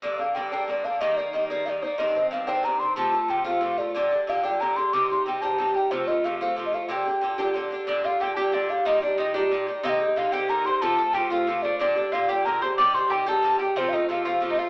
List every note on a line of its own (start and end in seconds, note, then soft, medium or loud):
0.02 0.19 G2 medium
0.02 0.20 D3 medium
0.02 0.19 A#3 medium
0.02 0.17 D4 medium
0.02 0.19 D5 medium
0.18 0.35 D3 soft
0.18 0.35 A#3 soft
0.18 0.35 D4 soft
0.18 0.36 F5 medium
0.35 0.52 G2 medium
0.35 0.52 D3 medium
0.35 0.52 A#3 medium
0.35 0.51 D4 medium
0.35 0.51 G5 medium
0.51 0.67 G2 soft
0.51 0.68 D3 medium
0.51 0.68 A#3 medium
0.51 0.68 D4 medium
0.51 0.67 G5 medium
0.68 0.84 G2 soft
0.68 0.85 D3 soft
0.68 0.84 A#3 medium
0.68 0.83 D4 medium
0.68 0.86 D5 medium
0.84 1.01 D3 soft
0.84 1.01 A#3 soft
0.84 1.01 D4 soft
0.84 1.02 F5 medium
1.01 1.17 G2 medium
1.01 1.18 D#3 medium
1.01 1.17 A#3 medium
1.01 1.16 D#4 medium
1.01 1.18 D#5 medium
1.16 1.33 D#3 soft
1.16 1.34 A#3 soft
1.16 1.34 D#4 soft
1.16 1.33 D5 medium
1.33 1.50 G2 medium
1.33 1.50 D#3 medium
1.33 1.50 A#3 medium
1.33 1.49 D#4 medium
1.33 1.48 D#5 medium
1.49 1.65 G2 medium
1.49 1.66 D#3 medium
1.49 1.67 A#3 medium
1.49 1.66 D#4 medium
1.49 1.67 D5 medium
1.66 1.83 G2 soft
1.66 1.83 D#3 soft
1.66 1.83 A#3 medium
1.66 1.81 D#4 medium
1.66 1.84 D5 medium
1.66 1.70 F5 medium
1.82 1.98 D#3 soft
1.82 1.99 A#3 soft
1.82 1.99 D#4 soft
1.82 1.87 C5 medium
1.86 2.00 D5 medium
1.98 2.15 G2 medium
1.98 2.15 D#3 medium
1.98 2.15 C4 medium
1.98 2.13 D4 medium
1.98 2.31 D#5 medium
2.15 2.31 D#3 soft
2.15 2.32 C4 soft
2.15 2.31 D4 soft
2.31 2.48 G2 medium
2.31 2.47 D#3 medium
2.31 2.46 C4 medium
2.31 2.46 D4 medium
2.31 2.49 F5 medium
2.47 2.62 G2 medium
2.47 2.63 D#3 medium
2.47 2.64 C4 medium
2.47 2.64 D4 medium
2.47 2.66 G5 medium
2.63 2.80 G2 medium
2.63 2.81 D#3 medium
2.63 2.80 C4 medium
2.63 2.78 D4 medium
2.63 2.81 A#5 medium
2.80 2.97 D#3 soft
2.80 2.97 C4 soft
2.80 2.97 D4 soft
2.80 2.97 C6 medium
2.96 3.13 C3 medium
2.96 3.14 F3 medium
2.96 3.12 A3 medium
2.96 3.11 F4 medium
2.96 3.32 A5 loud
3.12 3.28 F3 soft
3.12 3.29 A3 soft
3.12 3.29 F4 soft
3.28 3.45 C3 medium
3.28 3.44 F3 medium
3.28 3.44 A3 medium
3.28 3.43 F4 medium
3.28 3.46 G5 medium
3.44 3.60 C3 soft
3.44 3.60 F3 medium
3.44 3.62 A3 medium
3.44 3.62 F4 medium
3.44 3.80 F5 medium
3.61 3.78 C3 medium
3.61 3.79 F3 medium
3.61 3.78 A3 soft
3.61 3.76 F4 medium
3.78 3.95 F3 soft
3.78 3.95 A3 soft
3.78 3.95 F4 soft
3.78 3.95 D5 medium
3.95 4.11 A#2 medium
3.95 4.12 D3 medium
3.95 4.11 D4 medium
3.95 4.10 G4 medium
3.95 4.31 D5 loud
4.11 4.27 D3 soft
4.11 4.28 D4 soft
4.11 4.28 G4 soft
4.27 4.44 A#2 medium
4.27 4.44 D3 medium
4.27 4.43 D4 medium
4.27 4.42 G4 medium
4.27 4.47 F5 medium
4.43 4.59 A#2 soft
4.43 4.60 D3 medium
4.43 4.61 D4 medium
4.43 4.60 G4 medium
4.43 4.62 G5 medium
4.60 4.77 A#2 medium
4.60 4.77 D3 medium
4.60 4.76 D4 medium
4.60 4.75 G4 medium
4.60 4.78 A#5 medium
4.76 4.93 D3 soft
4.76 4.94 D4 soft
4.76 4.93 G4 soft
4.76 4.95 C6 medium
4.93 5.10 C3 medium
4.93 5.10 G3 medium
4.93 5.10 D#4 medium
4.93 5.09 G4 medium
4.93 5.10 D6 loud
5.10 5.25 G3 soft
5.10 5.27 D#4 soft
5.10 5.26 G4 soft
5.10 5.25 C6 medium
5.26 5.42 C3 medium
5.26 5.42 G3 medium
5.26 5.41 D#4 medium
5.26 5.41 G4 medium
5.26 5.43 G5 medium
5.42 5.57 C3 medium
5.42 5.58 G3 medium
5.42 5.59 D#4 medium
5.42 5.59 G4 medium
5.42 5.77 A5 medium
5.58 5.75 C3 medium
5.58 5.76 G3 medium
5.58 5.75 D#4 medium
5.58 5.73 G4 medium
5.74 5.91 G3 soft
5.74 5.92 D#4 soft
5.74 5.91 G4 soft
5.74 5.93 G5 medium
5.91 6.08 C3 medium
5.91 6.08 F3 medium
5.91 6.08 A3 medium
5.91 6.06 F4 medium
5.91 6.09 C5 medium
6.07 6.24 F3 soft
6.07 6.25 A3 soft
6.07 6.24 F4 soft
6.07 6.26 D#5 medium
6.24 6.41 C3 medium
6.24 6.41 F3 medium
6.24 6.41 A3 medium
6.24 6.40 F4 medium
6.24 6.40 F5 medium
6.40 6.55 C3 medium
6.40 6.56 F3 medium
6.40 6.57 A3 medium
6.40 6.57 F4 medium
6.40 6.56 F5 medium
6.56 6.73 C3 medium
6.56 6.74 F3 medium
6.56 6.73 A3 medium
6.56 6.71 F4 medium
6.66 6.76 D#5 medium
6.73 6.89 F3 soft
6.73 6.90 A3 soft
6.73 6.89 F4 soft
6.73 6.89 F5 medium
6.89 7.06 A#2 medium
6.89 7.06 D3 medium
6.89 7.06 D4 medium
6.89 7.04 G4 medium
6.89 7.51 G5 medium
7.05 7.21 D3 soft
7.05 7.22 D4 soft
7.05 7.22 G4 soft
7.21 7.38 A#2 medium
7.21 7.38 D3 medium
7.21 7.37 D4 medium
7.21 7.37 G4 medium
7.38 7.53 A#2 medium
7.38 7.54 D3 medium
7.38 7.55 D4 medium
7.38 7.55 G4 medium
7.54 7.71 A#2 medium
7.54 7.72 D3 medium
7.54 7.71 D4 medium
7.54 7.69 G4 medium
7.71 7.87 D3 soft
7.71 7.87 D4 soft
7.71 7.87 G4 soft
7.87 8.04 A#2 medium
7.87 8.04 D3 medium
7.87 8.03 D4 medium
7.87 8.04 D4 medium
7.87 8.03 G4 medium
7.87 8.07 D5 medium
8.04 8.20 D3 soft
8.04 8.21 D4 soft
8.04 8.20 F4 medium
8.04 8.20 G4 soft
8.04 8.23 F5 medium
8.20 8.37 A#2 medium
8.20 8.37 D3 medium
8.20 8.36 D4 medium
8.20 8.35 G4 medium
8.20 8.33 G5 medium
8.33 8.53 D4 medium
8.33 8.52 G4 medium
8.33 8.53 G4 medium
8.33 8.56 G5 medium
8.33 8.38 A5 medium
8.38 8.51 A#2 soft
8.38 8.52 D3 medium
8.52 8.69 A#2 medium
8.52 8.69 D3 medium
8.52 8.84 D4 medium
8.52 8.69 D4 medium
8.52 8.68 G4 medium
8.52 8.72 D5 medium
8.69 8.86 D3 soft
8.69 8.86 D4 soft
8.69 8.86 G4 soft
8.69 8.88 F5 medium
8.85 9.02 A#2 medium
8.85 9.02 G3 medium
8.85 9.01 D#4 medium
8.85 9.02 D#4 medium
8.85 9.01 G4 medium
8.85 9.03 D#5 loud
9.02 9.17 G3 soft
9.02 9.18 D4 medium
9.02 9.18 D#4 soft
9.02 9.19 G4 soft
9.02 9.21 D5 medium
9.18 9.34 A#2 medium
9.18 9.35 G3 medium
9.18 9.34 D#4 medium
9.18 9.33 G4 medium
9.18 9.38 D#5 medium
9.34 9.50 A#2 medium
9.34 9.51 G3 medium
9.34 9.83 D4 medium
9.34 9.51 D#4 medium
9.34 9.51 G4 medium
9.34 9.86 D5 medium
9.51 9.68 A#2 medium
9.51 9.68 G3 medium
9.51 9.67 D#4 medium
9.51 9.65 G4 medium
9.67 9.84 G3 soft
9.67 9.84 D#4 soft
9.67 9.83 G4 soft
9.83 10.00 C3 medium
9.83 10.01 D3 medium
9.83 10.14 D#4 medium
9.83 10.00 D#4 medium
9.83 9.99 G4 medium
9.83 9.90 F5 medium
9.89 10.19 D#5 loud
10.00 10.16 D3 soft
10.00 10.17 D#4 soft
10.00 10.16 G4 soft
10.16 10.33 C3 medium
10.16 10.32 D3 medium
10.16 10.32 D#4 medium
10.16 10.32 F4 medium
10.16 10.31 G4 medium
10.16 10.34 F5 medium
10.32 10.47 C3 medium
10.32 10.48 D3 medium
10.32 10.49 D#4 medium
10.32 10.49 G4 medium
10.32 10.51 G5 medium
10.48 10.65 C3 medium
10.48 10.66 D3 medium
10.48 10.65 D#4 medium
10.48 10.63 G4 medium
10.48 10.65 A#4 medium
10.48 10.67 A#5 medium
10.64 10.82 D3 soft
10.64 10.82 D#4 soft
10.64 10.81 G4 soft
10.64 10.82 C5 medium
10.64 10.83 C6 medium
10.82 10.98 C3 medium
10.82 10.98 F3 medium
10.82 10.98 A3 medium
10.82 10.97 F4 medium
10.82 10.97 A4 medium
10.82 11.15 A5 medium
10.98 11.13 F3 soft
10.98 11.14 A3 soft
10.98 11.15 F4 soft
10.98 11.14 A4 medium
11.13 11.30 C3 medium
11.13 11.30 F3 medium
11.13 11.30 A3 medium
11.13 11.29 F4 medium
11.13 11.30 G4 medium
11.13 11.30 G5 medium
11.30 11.46 C3 medium
11.30 11.47 F3 medium
11.30 11.48 A3 medium
11.30 11.47 F4 medium
11.30 11.64 F4 medium
11.30 11.64 F5 medium
11.47 11.64 C3 medium
11.47 11.64 F3 soft
11.47 11.63 A3 medium
11.47 11.62 F4 medium
11.63 11.80 F3 soft
11.63 11.81 A3 soft
11.63 11.79 D4 medium
11.63 11.80 F4 soft
11.63 11.79 D5 medium
11.79 11.96 A#2 medium
11.79 11.97 D3 medium
11.79 12.11 D4 medium
11.79 11.96 D4 medium
11.79 11.94 G4 medium
11.79 12.14 D5 medium
11.96 12.12 D3 soft
11.96 12.13 D4 soft
11.96 12.12 G4 soft
12.12 12.29 A#2 medium
12.12 12.29 D3 medium
12.12 12.28 D4 medium
12.12 12.29 F4 medium
12.12 12.27 G4 medium
12.12 12.31 F5 medium
12.28 12.44 A#2 soft
12.28 12.45 D3 medium
12.28 12.46 D4 medium
12.28 12.45 G4 medium
12.28 12.44 G4 medium
12.28 12.47 G5 medium
12.45 12.62 A#2 medium
12.45 12.62 D3 medium
12.45 12.62 D4 medium
12.45 12.60 G4 medium
12.45 12.61 A#4 medium
12.45 12.64 A#5 medium
12.61 12.79 D3 soft
12.61 12.79 D4 soft
12.61 12.78 G4 medium
12.61 12.77 C5 medium
12.61 12.76 C6 medium
12.77 12.94 C3 medium
12.77 12.95 G3 medium
12.77 12.94 D#4 medium
12.77 12.93 G4 medium
12.77 12.93 D5 medium
12.77 12.96 D6 loud
12.94 13.10 G3 soft
12.94 13.11 D#4 soft
12.94 13.11 G4 soft
12.94 13.06 C5 medium
12.94 13.13 C6 loud
13.08 13.27 C3 medium
13.08 13.27 G3 medium
13.08 13.26 G4 medium
13.08 13.11 A4 medium
13.12 13.26 D#4 medium
13.12 13.25 G4 medium
13.12 13.30 G5 medium
13.26 13.41 C3 medium
13.26 13.43 G3 medium
13.26 13.43 D#4 medium
13.26 13.43 G4 medium
13.26 13.61 A4 medium
13.26 13.60 A5 loud
13.42 13.59 C3 medium
13.42 13.60 G3 medium
13.42 13.59 D#4 medium
13.42 13.58 G4 medium
13.59 13.76 G3 soft
13.59 13.77 D#4 soft
13.59 13.76 G4 soft
13.59 13.75 G4 medium
13.59 13.79 G5 medium
13.76 13.92 C3 medium
13.76 13.93 F3 medium
13.76 13.93 A3 medium
13.76 13.93 C4 medium
13.76 13.91 F4 medium
13.76 13.90 C5 loud
13.89 14.08 D#4 medium
13.89 14.09 F4 soft
13.89 13.95 F5 medium
13.94 14.08 F3 soft
13.94 14.10 A3 soft
13.94 14.09 D#5 medium
14.09 14.25 C3 medium
14.09 14.25 F3 medium
14.09 14.24 A3 medium
14.09 14.24 F4 medium
14.09 14.25 F5 medium
14.25 14.40 C3 medium
14.25 14.41 F3 medium
14.25 14.42 A3 medium
14.25 14.41 F4 medium
14.25 14.41 F5 medium
14.41 14.57 C3 soft
14.41 14.58 F3 medium
14.41 14.57 A3 medium
14.41 14.56 F4 medium
14.50 14.58 D#4 medium
14.50 14.60 D#5 medium
14.57 14.70 F3 soft
14.57 14.70 A3 soft
14.57 14.70 F4 soft
14.57 14.70 F4 medium
14.57 14.70 F5 medium